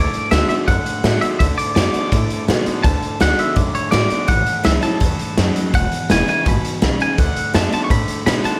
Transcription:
Already playing: upright bass D2, clean electric guitar D3 A3 D5, steel-string acoustic guitar D3
0.14 closed hi-hat
0.31 upright bass D2, steel-string acoustic guitar D3 A3 D4 F#4, clean electric guitar D3 B3 E5, snare, closed hi-hat
0.49 clean electric guitar D3 B3 E5, steel-string acoustic guitar D4 F#4, muted upright bass stroke, closed hi-hat
0.68 upright bass F#2, steel-string acoustic guitar A2, clean electric guitar D3 A3 F#5, kick, closed hi-hat
0.85 muted upright bass stroke, closed hi-hat
1.04 upright bass A2, steel-string acoustic guitar D3 A3 D4 F#4, clean electric guitar D3 B3, snare, closed hi-hat
1.21 clean electric guitar D3 B3 E5, steel-string acoustic guitar D4 F#4, muted upright bass stroke, closed hi-hat
1.39 upright bass D2, clean electric guitar D3 A3 E5, steel-string acoustic guitar D3, kick, closed hi-hat
1.58 clean electric guitar D5, muted upright bass stroke, closed hi-hat
1.75 upright bass F#2, steel-string acoustic guitar D3 A3 D4 F#4, clean electric guitar D3 B3 D5, snare, closed hi-hat
1.94 clean electric guitar D3 B3, steel-string acoustic guitar D4 F#4, muted upright bass stroke, closed hi-hat
2.12 upright bass A2, steel-string acoustic guitar A2, clean electric guitar D3 A3, kick, closed hi-hat
2.30 muted upright bass stroke, closed hi-hat
2.47 upright bass B2, clean electric guitar D3 B3, steel-string acoustic guitar D3 A3 D4 F#4, snare, closed hi-hat
2.65 clean electric guitar D3 B3, steel-string acoustic guitar D4 F#4, muted upright bass stroke, closed hi-hat
2.83 upright bass D2, clean electric guitar D3 A3 A5, steel-string acoustic guitar D3, kick, closed hi-hat
3.03 muted upright bass stroke, closed hi-hat
3.20 upright bass D2, steel-string acoustic guitar D3 A3 D4 F#4, clean electric guitar D3 B3 F#5, snare, closed hi-hat
3.38 clean electric guitar D3 B3 E5, closed hi-hat
3.56 upright bass F#2, steel-string acoustic guitar A2, clean electric guitar D3 A3 D5, kick, closed hi-hat
3.75 clean electric guitar C#5, muted upright bass stroke, closed hi-hat
3.91 upright bass A2, steel-string acoustic guitar D3 A3 D4 F#4, clean electric guitar D3 B3 D5, snare, closed hi-hat
4.10 clean electric guitar D3 B3, steel-string acoustic guitar D4 F#4, muted upright bass stroke, closed hi-hat
4.28 upright bass A1, steel-string acoustic guitar A2, clean electric guitar A2 E3 F#5, kick, closed hi-hat
4.46 muted upright bass stroke, closed hi-hat
4.64 upright bass C#2, clean electric guitar A2 F#3 E5, steel-string acoustic guitar E3 A3 C#4 E4, snare, closed hi-hat
4.81 clean electric guitar A2 F#3 A5, steel-string acoustic guitar C#4 E4, closed hi-hat
5.00 upright bass E2, steel-string acoustic guitar G2, clean electric guitar A2 E3, kick, closed hi-hat
5.19 muted upright bass stroke, closed hi-hat
5.37 steel-string acoustic guitar F#2, upright bass F#2, clean electric guitar A2 F#3, snare, closed hi-hat
5.55 clean electric guitar A2 F#3, closed hi-hat
5.73 upright bass E1, clean electric guitar E2 B2 F#5, steel-string acoustic guitar E2, kick, closed hi-hat
5.92 muted upright bass stroke, closed hi-hat
6.09 upright bass E1, clean electric guitar E2 C#3 G#5, steel-string acoustic guitar E3 G#3 B3 E4, snare, closed hi-hat
6.27 clean electric guitar E2 C#3 G#5, steel-string acoustic guitar B3 E4, muted upright bass stroke, closed hi-hat
6.46 upright bass G#1, clean electric guitar E2 B2 B5, steel-string acoustic guitar B2, kick, closed hi-hat
6.64 muted upright bass stroke, closed hi-hat
6.81 upright bass B1, clean electric guitar E2 C#3, steel-string acoustic guitar C#3, snare, closed hi-hat
6.99 clean electric guitar E2 C#3 G#5, muted upright bass stroke, closed hi-hat
7.17 upright bass D2, clean electric guitar D3 A3 F#5, steel-string acoustic guitar D3, kick, closed hi-hat
7.36 muted upright bass stroke, closed hi-hat
7.54 upright bass F#2, steel-string acoustic guitar D3 A3 D4 F#4, clean electric guitar D3 B3 A5, snare, closed hi-hat
7.72 clean electric guitar D3 B3 A5, steel-string acoustic guitar D4 F#4, muted upright bass stroke, closed hi-hat
7.84 clean electric guitar C#6
7.89 upright bass A2, steel-string acoustic guitar A2, clean electric guitar D3 A3 B5, kick, closed hi-hat
8.08 muted upright bass stroke, closed hi-hat
8.26 upright bass B2, clean electric guitar D3 B3 B5, steel-string acoustic guitar D3 A3 D4 F#4, snare, closed hi-hat
8.44 clean electric guitar D3 B3 A5, steel-string acoustic guitar D4 F#4, muted upright bass stroke, closed hi-hat

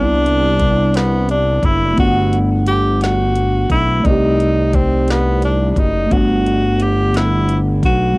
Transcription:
Already playing: analog synth bass C2, tine electric piano G3 B3 D4, tenor saxophone D4
0.03 tine electric piano E4
0.26 closed hi-hat
0.60 kick, closed hi-hat
0.94 tenor saxophone B3, snare, closed hi-hat
1.29 tenor saxophone D4, closed hi-hat
1.63 analog synth bass F#1, tenor saxophone E4, kick, closed hi-hat
1.93 tine electric piano A3 B3
1.98 analog synth bass G1, tine electric piano D4, tenor saxophone F#4, kick, closed hi-hat
2.04 tine electric piano F#5
2.33 closed hi-hat
2.66 tenor saxophone G4, closed hi-hat
3.01 tenor saxophone F#4, snare, closed hi-hat
3.35 closed hi-hat
3.70 analog synth bass B1, tenor saxophone E4, kick, closed hi-hat
4.00 tine electric piano A3 D5
4.05 analog synth bass C2, tenor saxophone D#4, tine electric piano D#4, kick, closed hi-hat
4.11 tine electric piano G4
4.40 closed hi-hat
4.73 tenor saxophone C4, kick, closed hi-hat
5.08 tenor saxophone B3, snare, closed hi-hat
5.42 tenor saxophone D4, closed hi-hat
5.71 tenor saxophone D4
5.76 analog synth bass F#1, tenor saxophone D#4, kick, closed hi-hat
6.06 tine electric piano A3 B3
6.11 analog synth bass G1, tine electric piano D4, tenor saxophone F#4, kick, closed hi-hat
6.17 tine electric piano F#5
6.46 closed hi-hat
6.80 tenor saxophone G4, closed hi-hat
7.14 tenor saxophone E4, snare, closed hi-hat
7.49 closed hi-hat
7.83 analog synth bass B1, tenor saxophone F#4, kick, closed hi-hat
8.13 tine electric piano G3

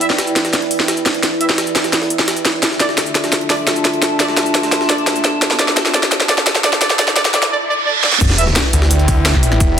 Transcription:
Already playing: analog synth pad E4 B4 E5, ambient pad E4 D5 G5
0.01 brass ensemble E4 B4 E5, closed hi-hat
0.10 snare
0.19 snare, closed hi-hat
0.27 closed hi-hat
0.36 snare, closed hi-hat
0.45 snare, closed hi-hat
0.53 snare, closed hi-hat
0.62 closed hi-hat
0.71 closed hi-hat, open hi-hat
0.80 snare
0.88 snare, closed hi-hat
0.97 closed hi-hat
1.06 snare, closed hi-hat
1.14 closed hi-hat
1.23 snare, closed hi-hat
1.41 brass ensemble E4 B4 E5, closed hi-hat
1.49 snare
1.58 snare, closed hi-hat
1.67 closed hi-hat
1.75 snare, closed hi-hat
1.84 snare, closed hi-hat
1.93 snare, closed hi-hat
2.02 snare
2.10 closed hi-hat
2.19 snare, closed hi-hat
2.28 snare, closed hi-hat
2.37 closed hi-hat
2.45 snare, closed hi-hat
2.63 analog synth pad D4 A4 E5, ambient pad F4, snare, closed hi-hat, riser
2.71 snare
2.80 brass ensemble D4 A4 D5, snare, closed hi-hat
2.89 ambient pad A5, snare
2.98 snare, closed hi-hat
3.06 closed hi-hat
3.15 snare, closed hi-hat
3.24 snare, closed hi-hat
3.32 snare, closed hi-hat
3.41 closed hi-hat
3.50 brass ensemble D4 A4 D5, snare, closed hi-hat, open hi-hat
3.67 snare, closed hi-hat
3.76 closed hi-hat
3.85 snare, closed hi-hat
3.94 closed hi-hat
4.02 snare, closed hi-hat
4.20 brass ensemble D4 A4 D5, snare, closed hi-hat
4.28 snare
4.37 snare, closed hi-hat
4.46 closed hi-hat
4.55 snare, closed hi-hat
4.63 snare, closed hi-hat
4.72 snare, closed hi-hat
4.81 snare
4.89 brass ensemble D4 A4 D5, snare, closed hi-hat
4.98 closed hi-hat
5.07 snare, closed hi-hat
5.16 closed hi-hat
5.24 snare, closed hi-hat
5.42 snare, closed hi-hat
5.51 snare
5.59 brass ensemble D4 A4 D5, snare, closed hi-hat
5.68 snare
5.77 snare, closed hi-hat
5.86 snare, closed hi-hat
5.94 brass ensemble D4 A4 D5, snare, closed hi-hat
6.03 snare, closed hi-hat
6.12 snare, closed hi-hat
6.20 snare, closed hi-hat
6.29 brass ensemble D4 A4 D5, snare, closed hi-hat, open hi-hat
6.38 snare
6.46 snare, closed hi-hat
6.55 snare, closed hi-hat
6.64 brass ensemble D4 A4 D5, snare, closed hi-hat
6.73 snare, closed hi-hat
6.81 brass ensemble D4 A4 D5, snare, closed hi-hat
6.90 snare
6.99 brass ensemble D4 A4 D5, snare, closed hi-hat
7.08 snare, closed hi-hat
7.16 brass ensemble D4 A4 D5, snare, closed hi-hat
7.25 snare, closed hi-hat
7.34 brass ensemble D4 A4 D5, snare, closed hi-hat
7.42 snare, closed hi-hat
7.51 brass ensemble D4 A4 D5, reverse cymbal
7.69 brass ensemble D4 A4 D5
7.86 brass ensemble D4 A4 D5
8.03 brass ensemble D4 A4 D5, snare
8.12 snare
8.21 detuned saw bass E1, ambient pad E4, analog synth pad E4 B4 E5, kick, closed hi-hat, crash, sub drop
8.29 ambient pad D5, snare
8.38 brass ensemble E4 B4 E5, ambient pad G5, closed hi-hat
8.47 snare
8.56 snare, closed hi-hat
8.73 detuned saw bass D2, closed hi-hat
8.82 snare
8.91 closed hi-hat
8.99 closed hi-hat
9.08 kick, closed hi-hat, open hi-hat
9.26 snare, closed hi-hat
9.34 kick, snare
9.43 closed hi-hat
9.52 snare, closed hi-hat
9.60 detuned saw bass E1, kick, closed hi-hat

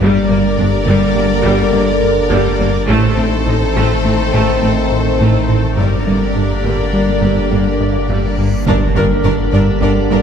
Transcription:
0.00 sub bass G1, double bass section G1, analog synth bass G2, cello section G2, french horn section D3 A#4, viola section G3, ambient pad A#3 D4 G4 D5, violin section A#4 D5
0.29 double bass section G1, cello section G2, analog synth bass G3, viola section A#3
0.58 double bass section G1, analog synth bass G2, cello section G2, viola section D4
0.86 double bass section G1, cello section G2, analog synth bass G2, viola section G3
1.16 double bass section G1, cello section G2, analog synth bass G3, viola section A#3
1.44 double bass section G1, cello section G2, analog synth bass G2, viola section G3
1.73 double bass section G1, cello section G2, analog synth bass G3, viola section A#3, felt piano D5
2.03 analog synth bass G2
2.31 double bass section G1, cello section G2, analog synth bass G2, viola section G3
2.60 double bass section G1, cello section G2, analog synth bass G2, viola section A#3
2.88 double bass section A1, sub bass A1, cello section A2, analog synth bass A2, french horn section D#3 C5, ambient pad A3 C4 D#4 A4, viola section A3, violin section A4 C5
3.18 double bass section A1, cello section A2, analog synth bass A3, viola section C4
3.46 double bass section A1, cello section A2, analog synth bass A2, viola section D#4, felt piano A4
3.75 double bass section A1, cello section A2, analog synth bass A2, viola section A3
4.04 double bass section A1, cello section A2, analog synth bass A3, viola section C4
4.33 double bass section A1, cello section A2, analog synth bass A2, viola section A3
4.62 double bass section A1, cello section A2, analog synth bass A3, viola section C4
4.92 analog synth bass A2
5.20 double bass section A1, cello section A2, analog synth bass A2, viola section A3
5.48 double bass section A1, analog synth bass A2, cello section A2, viola section C4
5.77 double bass section G1, sub bass G1, cello section G2, analog synth bass G2, french horn section D3 A#4, viola section G3, ambient pad A#3 D4 G4 D5, violin section A#4 D5, reverse cymbal
6.06 double bass section G1, cello section G2, analog synth bass G3, viola section A#3
6.35 double bass section G1, cello section G2, analog synth bass G2, viola section D4
6.64 double bass section G1, cello section G2, analog synth bass G2, viola section G3
6.93 double bass section G1, cello section G2, analog synth bass G3, viola section A#3
7.21 double bass section G1, analog synth bass G2, cello section G2, viola section G3
7.51 double bass section G1, cello section G2, analog synth bass G3, viola section A#3
7.80 analog synth bass G2, felt piano D5
8.09 double bass section G1, analog synth bass G2, cello section G2, viola section G3
8.38 double bass section G1, analog synth bass G2, cello section G2, viola section A#3
8.66 sub bass G1, double bass section G1, analog synth bass G2, cello section G2, french horn section D3 A#4, ambient pad A#3 D4 G4 D5, viola section D4, violin section A#4 D5, impact
8.96 double bass section G1, cello section G2, analog synth bass G3, viola section D4, violin section A#4 D5, felt piano A#4
9.24 double bass section G1, cello section G2, analog synth bass G2, viola section D4, violin section A#4 D5
9.52 double bass section G1, analog synth bass G2, cello section G2, viola section D4, violin section A#4 D5
9.82 double bass section G1, cello section G2, analog synth bass G3, viola section D4, violin section A#4 D5
10.10 double bass section G1, analog synth bass G2, cello section G2, viola section D4, violin section A#4 D5

